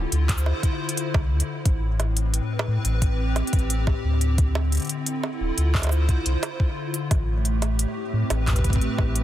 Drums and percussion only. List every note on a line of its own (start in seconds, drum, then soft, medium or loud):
0.12 closed hi-hat medium
0.29 kick loud
0.29 clap loud
0.29 closed hi-hat medium
0.38 shaker medium
0.46 high bongo soft
0.63 kick medium
0.63 closed hi-hat soft
0.89 closed hi-hat medium
0.97 closed hi-hat medium
1.14 kick loud
1.14 high bongo medium
1.40 closed hi-hat medium
1.66 kick loud
1.66 closed hi-hat medium
2.00 closed hi-hat soft
2.00 high bongo soft
2.17 closed hi-hat medium
2.34 closed hi-hat medium
2.59 high bongo medium
2.85 closed hi-hat medium
3.02 kick loud
3.02 closed hi-hat medium
3.36 closed hi-hat soft
3.36 high bongo medium
3.47 closed hi-hat soft
3.53 kick loud
3.53 closed hi-hat medium
3.59 closed hi-hat soft
3.70 closed hi-hat medium
3.87 kick loud
3.87 high bongo medium
4.21 closed hi-hat soft
4.38 kick loud
4.38 closed hi-hat medium
4.55 high bongo medium
4.72 closed hi-hat soft
4.75 closed hi-hat soft
4.77 closed hi-hat soft
4.80 closed hi-hat soft
4.82 closed hi-hat soft
4.85 closed hi-hat soft
4.87 closed hi-hat soft
4.89 closed hi-hat medium
5.06 closed hi-hat medium
5.24 high bongo medium
5.58 closed hi-hat medium
5.75 kick loud
5.75 clap loud
5.75 high bongo soft
5.77 high bongo soft
5.80 high bongo soft
5.82 closed hi-hat medium
5.82 high bongo soft
5.84 high bongo soft
5.87 high bongo soft
5.89 high bongo soft
5.89 shaker medium
6.09 kick medium
6.09 closed hi-hat soft
6.26 closed hi-hat medium
6.43 closed hi-hat medium
6.43 high bongo medium
6.60 kick loud
6.94 closed hi-hat medium
7.11 kick loud
7.11 closed hi-hat medium
7.11 high bongo medium
7.45 closed hi-hat soft
7.62 closed hi-hat medium
7.62 high bongo medium
7.79 closed hi-hat medium
8.30 closed hi-hat medium
8.30 high bongo medium
8.47 kick soft
8.47 clap loud
8.47 closed hi-hat soft
8.53 kick medium
8.53 closed hi-hat soft
8.59 kick medium
8.64 kick medium
8.64 closed hi-hat soft
8.70 kick medium
8.70 closed hi-hat soft
8.76 kick medium
8.81 closed hi-hat soft
8.98 kick loud
8.98 high bongo medium
9.16 closed hi-hat medium